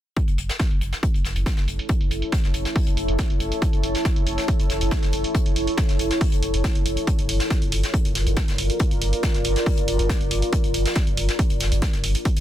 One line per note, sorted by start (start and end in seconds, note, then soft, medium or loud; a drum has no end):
0.16 7.07 E4 medium
0.16 kick loud
0.16 closed hi-hat medium
0.28 0.38 F#1 medium
0.28 closed hi-hat soft
0.28 closed hi-hat medium
0.38 0.49 F#1 loud
0.38 closed hi-hat medium
0.49 snare soft
0.49 closed hi-hat medium
0.54 7.07 A4 medium
0.59 7.07 C#5 medium
0.59 kick loud
0.59 snare loud
0.59 closed hi-hat medium
0.71 0.81 F#1 medium
0.71 closed hi-hat medium
0.81 0.93 F#1 loud
0.81 closed hi-hat medium
0.93 snare soft
0.93 closed hi-hat medium
1.03 kick loud
1.03 closed hi-hat medium
1.14 1.24 F#1 medium
1.14 closed hi-hat medium
1.14 closed hi-hat soft
1.25 1.35 F#1 medium
1.25 snare soft
1.25 closed hi-hat medium
1.36 1.46 F#1 medium
1.36 closed hi-hat soft
1.36 closed hi-hat medium
1.46 kick loud
1.46 snare loud
1.46 closed hi-hat medium
1.57 1.67 F#1 medium
1.57 snare soft
1.57 closed hi-hat medium
1.68 1.79 F#1 loud
1.68 closed hi-hat medium
1.79 closed hi-hat medium
1.89 kick loud
1.89 closed hi-hat medium
2.01 2.10 F#1 medium
2.01 closed hi-hat medium
2.11 2.22 F#1 loud
2.11 closed hi-hat medium
2.22 closed hi-hat medium
2.32 kick loud
2.32 snare loud
2.32 closed hi-hat medium
2.44 2.53 F#1 medium
2.44 snare soft
2.44 closed hi-hat medium
2.54 2.65 F#1 loud
2.54 closed hi-hat medium
2.65 snare soft
2.65 closed hi-hat medium
2.76 kick loud
2.76 closed hi-hat medium
2.76 open hi-hat medium
2.87 2.97 F#1 medium
2.87 closed hi-hat soft
2.87 closed hi-hat medium
2.97 3.08 F#1 medium
2.97 closed hi-hat medium
3.08 3.19 F#1 medium
3.08 closed hi-hat medium
3.18 kick loud
3.18 snare loud
3.18 closed hi-hat medium
3.30 3.40 F#1 medium
3.30 closed hi-hat medium
3.40 3.52 F#1 loud
3.40 closed hi-hat medium
3.52 closed hi-hat soft
3.52 closed hi-hat medium
3.62 kick loud
3.62 closed hi-hat medium
3.73 3.83 F#1 medium
3.73 closed hi-hat medium
3.73 closed hi-hat soft
3.83 3.95 F#1 loud
3.83 closed hi-hat medium
3.95 snare soft
3.95 closed hi-hat medium
4.05 kick loud
4.05 snare loud
4.05 closed hi-hat medium
4.16 4.26 F#1 medium
4.16 closed hi-hat medium
4.27 4.38 F#1 loud
4.27 closed hi-hat medium
4.38 snare soft
4.38 closed hi-hat medium
4.48 kick loud
4.48 closed hi-hat medium
4.60 4.69 F#1 medium
4.60 closed hi-hat soft
4.70 4.81 F#1 medium
4.70 snare soft
4.70 closed hi-hat medium
4.81 4.91 F#1 medium
4.81 closed hi-hat soft
4.81 closed hi-hat medium
4.91 kick loud
4.91 snare loud
4.91 closed hi-hat medium
5.02 5.13 F#1 medium
5.02 snare soft
5.02 closed hi-hat medium
5.12 5.24 F#1 loud
5.12 closed hi-hat medium
5.24 closed hi-hat soft
5.35 kick loud
5.35 closed hi-hat medium
5.46 5.56 F#1 medium
5.46 closed hi-hat medium
5.56 5.67 F#1 loud
5.56 closed hi-hat medium
5.67 closed hi-hat medium
5.77 kick loud
5.77 snare loud
5.77 closed hi-hat medium
5.89 5.99 F#1 medium
5.89 snare soft
5.89 closed hi-hat medium
5.99 6.11 F#1 loud
5.99 closed hi-hat medium
6.11 snare soft
6.11 closed hi-hat soft
6.21 kick loud
6.21 closed hi-hat medium
6.21 open hi-hat medium
6.32 6.42 F#1 medium
6.32 closed hi-hat soft
6.43 6.53 F#1 medium
6.43 closed hi-hat medium
6.54 6.64 F#1 medium
6.54 closed hi-hat soft
6.64 kick loud
6.64 snare loud
6.64 closed hi-hat medium
6.75 6.85 F#1 medium
6.75 closed hi-hat soft
6.86 6.97 F#1 loud
6.86 closed hi-hat medium
6.97 closed hi-hat soft
7.07 12.40 F4 medium
7.07 kick loud
7.07 closed hi-hat medium
7.19 7.28 G1 medium
7.19 closed hi-hat soft
7.29 7.40 G1 loud
7.29 closed hi-hat medium
7.29 open hi-hat loud
7.40 snare soft
7.40 closed hi-hat medium
7.48 12.40 A#4 medium
7.48 kick loud
7.48 snare loud
7.48 closed hi-hat medium
7.55 12.40 D5 medium
7.62 7.71 G1 medium
7.62 closed hi-hat soft
7.72 7.83 G1 loud
7.72 closed hi-hat medium
7.72 open hi-hat medium
7.83 snare soft
7.83 closed hi-hat soft
7.94 kick loud
7.94 closed hi-hat medium
8.05 8.15 G1 medium
8.05 closed hi-hat soft
8.15 8.26 G1 medium
8.15 snare soft
8.15 closed hi-hat medium
8.15 open hi-hat loud
8.26 8.37 G1 medium
8.26 closed hi-hat soft
8.36 kick loud
8.36 snare loud
8.36 closed hi-hat medium
8.48 8.58 G1 medium
8.48 snare medium
8.48 closed hi-hat soft
8.58 8.70 G1 loud
8.58 closed hi-hat medium
8.58 open hi-hat medium
8.70 closed hi-hat soft
8.79 kick loud
8.79 closed hi-hat medium
8.91 9.01 G1 medium
8.91 closed hi-hat medium
9.01 9.13 G1 loud
9.01 closed hi-hat medium
9.01 open hi-hat loud
9.13 closed hi-hat soft
9.23 kick loud
9.23 snare loud
9.23 closed hi-hat medium
9.34 9.44 G1 medium
9.34 snare soft
9.34 closed hi-hat soft
9.44 9.56 G1 loud
9.44 closed hi-hat medium
9.44 open hi-hat medium
9.56 snare soft
9.56 closed hi-hat soft
9.66 kick loud
9.66 closed hi-hat medium
9.66 open hi-hat medium
9.77 9.87 G1 medium
9.77 closed hi-hat soft
9.88 9.99 G1 medium
9.88 closed hi-hat medium
9.88 open hi-hat loud
9.99 10.09 G1 medium
9.99 closed hi-hat soft
10.09 kick loud
10.09 snare loud
10.09 closed hi-hat medium
10.21 10.30 G1 medium
10.21 closed hi-hat soft
10.31 10.42 G1 loud
10.31 closed hi-hat medium
10.31 open hi-hat medium
10.42 closed hi-hat soft
10.53 kick loud
10.53 closed hi-hat medium
10.64 10.74 G1 medium
10.64 closed hi-hat soft
10.74 10.85 G1 loud
10.74 closed hi-hat medium
10.74 open hi-hat loud
10.86 snare medium
10.86 closed hi-hat medium
10.95 kick loud
10.95 snare loud
10.95 closed hi-hat medium
11.07 11.17 G1 medium
11.07 closed hi-hat medium
11.17 11.29 G1 loud
11.17 closed hi-hat medium
11.17 open hi-hat medium
11.29 snare soft
11.29 closed hi-hat medium
11.39 kick loud
11.39 closed hi-hat medium
11.50 11.60 G1 medium
11.50 closed hi-hat soft
11.60 11.71 G1 medium
11.60 snare soft
11.60 closed hi-hat medium
11.60 open hi-hat loud
11.72 11.82 G1 medium
11.72 closed hi-hat soft
11.82 kick loud
11.82 snare loud
11.82 closed hi-hat medium
11.93 12.03 G1 medium
11.93 snare soft
11.93 closed hi-hat soft
12.04 12.15 G1 loud
12.04 closed hi-hat medium
12.04 open hi-hat medium
12.14 closed hi-hat soft
12.25 kick loud
12.25 closed hi-hat medium
12.37 12.40 G1 medium
12.37 closed hi-hat medium